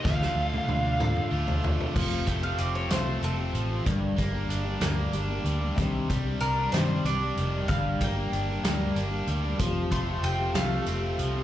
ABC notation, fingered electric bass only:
X:1
M:6/8
L:1/8
Q:3/8=63
K:Gm
V:1 name="Fingered electric bass" clef=bass
D,, D,, D,,2 D,,2 | F,,, F,,, F,,, C,, F,,, A,,, | G,,, G,,, G,,, D,, G,,, D,, | C,, C,, C,, G,, C,, F,,, |
G,,, G,,, G,,, D,, G,,, D,, | F,,, F,,, F,,, C,, F,,, C,, |]